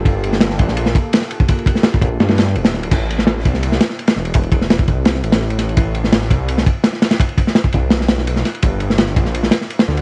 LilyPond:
<<
  \new Staff \with { instrumentName = "Ambient pad" } { \time 4/4 \key a \phrygian \tempo 4 = 168 <bes f' g' a'>1~ | <bes f' g' a'>1 | r1 | r1 |
r1 | r1 | r1 | }
  \new Staff \with { instrumentName = "Detuned saw bass" } { \clef bass \time 4/4 \key a \phrygian g,,4. bes,,4 r4. | r4. bes,,8 g,4 d,,4 | a,,4. c,4 r4 e,,8~ | e,,4. c,4 a,,4.~ |
a,,4. c,4 r4. | r4. c,8 b,,4. r8 | g,,4. bes,,4 r4 d,8 | }
  \new DrumStaff \with { instrumentName = "Drums" } \drummode { \time 4/4 <bd cymr>8 cymr16 sn16 <cymr sn>16 sn16 <bd cymr>16 sn16 cymr16 sn16 <bd cymr>8 <cymr sn>16 sn16 cymr16 bd16 | <bd cymr>16 cymr16 <bd cymr>16 sn16 <cymr sn>16 bd16 <bd cymr>8 <cymr sn>16 <cymr sn>16 <cymr sn>16 sn16 cymr16 <cymr sn>16 sn16 cymr16 | <cymc bd cymr>8 cymr16 sn16 <cymr sn>16 sn16 <bd cymr>16 sn16 cymr16 sn16 <cymr sn>16 sn16 cymr16 <cymr sn>16 sn16 cymr16 | <bd cymr>16 cymr16 <bd cymr>16 sn16 <cymr sn>16 bd16 <bd cymr>8 <cymr sn>16 sn16 cymr16 <cymr sn>16 sn16 cymr16 <cymr sn>16 cymr16 |
<bd cymr>8 cymr16 sn16 <cymr sn>16 sn16 <bd cymr>8 cymr16 sn16 <bd cymr>8 <cymr sn>16 sn16 <cymr sn>16 <cymr sn>16 | <bd cymr>16 cymr16 <bd cymr>16 sn16 <cymr sn>16 bd16 <bd cymr>8 <cymr sn>16 sn16 <cymr sn>16 sn16 cymr16 sn16 <cymr sn>16 cymr16 | <bd cymr>8 cymr16 sn16 <cymr sn>16 sn16 <bd cymr>16 sn16 cymr16 sn16 <cymr sn>16 sn16 cymr16 <cymr sn>16 sn16 cymr16 | }
>>